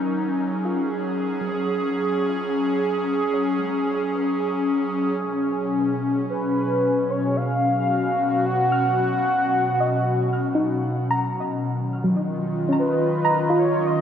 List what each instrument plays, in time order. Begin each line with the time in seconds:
Already playing: analog synth pad F#3 C#4 D#4 A#4, synth pluck C#4
0.48 analog synth pad G#4
0.65 synth pluck F4
1.41 synth pluck F#3
3.34 synth pluck C#5
3.59 synth pluck G#3
4.15 synth pluck B4
5.19 analog synth pad B2
6.30 soft synth lead B4
7.11 soft synth lead C#5
7.24 analog synth pad F#4
7.36 soft synth lead F5
8.45 soft synth lead F#5
8.72 synth pluck F6
9.80 synth pluck D#5
10.55 synth pluck D#4
11.11 synth pluck A#5
11.66 analog synth pad D#3
11.90 analog synth pad F4
11.97 analog synth pad D#5
12.04 synth pluck F#3
12.69 synth pluck C#4
12.79 soft synth lead B4
13.25 synth pluck A#5
13.50 synth pluck F4
13.59 soft synth lead C#5
13.86 soft synth lead D#5